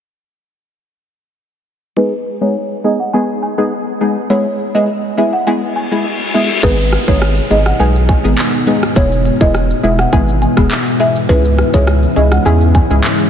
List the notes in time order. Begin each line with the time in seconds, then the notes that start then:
1.96 G#3 B3 D#4 G#4 B4
2.41 G#3 B3 D#4 G#4 C#5
2.84 G#3 B3 D#4 G#4 D#5
3.00 F#5
3.13 G#3 B3 D#4 G#4 G#5
3.43 G#5
3.58 G#3 B3 D#4 G#4
4.01 G#3 B3 D#4 G#4
4.30 G#3 B3 E4 G#4 C#5
4.75 G#3 B3 E4 G#4 D#5
5.17 G#3 B3 E4 G#4 E5
5.33 F#5
5.47 G#3 B3 E4 G#4 G#5, reverse cymbal
5.76 G#5
5.91 G#3 B3 E4 G#4
6.34 G#3 B3 E4 G#4 E5
6.63 G#1 G#2 B2 D#3 G#3 B3 D#4 G#4 B4, kick, crash, downlifter, shaker
6.79 shaker
6.93 cross-stick, closed hi-hat, shaker
7.08 G#1 G#3 B3 D#4 G#4 C#5, kick, shaker
7.22 cross-stick, shaker
7.37 shaker
7.50 G#1 G#3 B3 D#4 G#4 D#5, closed hi-hat, shaker
7.66 F#5, cross-stick, shaker
7.79 B1 G#3 B3 D#4 G#4 G#5, shaker
7.95 shaker
8.09 G#5, kick, closed hi-hat, shaker
8.24 G#1 G#3 B3 D#4 G#4, shaker
8.38 clap, shaker
8.54 shaker
8.67 G#3 B3 D#4 G#4, closed hi-hat, shaker
8.83 cross-stick, shaker
8.96 E1 G#2 E3 G#3 B3 E4 G#4 C#5, kick, shaker
9.12 shaker
9.26 closed hi-hat, shaker
9.40 E1 G#3 B3 E4 G#4 D#5, kick, shaker
9.55 cross-stick, shaker
9.70 shaker
9.83 E1 G#3 B3 E4 G#4 E5, closed hi-hat, shaker
9.99 F#5, cross-stick, shaker
10.12 G#1 G#3 B3 E4 G#4 G#5, kick, shaker
10.28 shaker
10.42 G#5, closed hi-hat, shaker
10.57 E1 G#3 B3 E4 G#4, kick, cross-stick, shaker
10.71 clap, shaker
10.87 shaker
11.00 G#3 B3 E4 G#4 E5, closed hi-hat, shaker
11.16 shaker
11.29 C#2 C#3 G#3 C#4 E4 G#4 B4, kick, shaker
11.45 shaker
11.59 cross-stick, closed hi-hat, shaker
11.73 C#2 G#3 C#4 E4 G#4 C#5, kick, shaker
11.87 cross-stick, shaker
12.03 shaker
12.16 C#2 G#3 C#4 E4 G#4 D#5, closed hi-hat, shaker
12.32 F#5, cross-stick, shaker
12.45 E2 G#3 C#4 E4 G#4 G#5, shaker
12.61 shaker
12.75 G#5, kick, closed hi-hat, shaker
12.90 C#2 G#3 C#4 E4 G#4, shaker
13.04 clap, shaker
13.19 shaker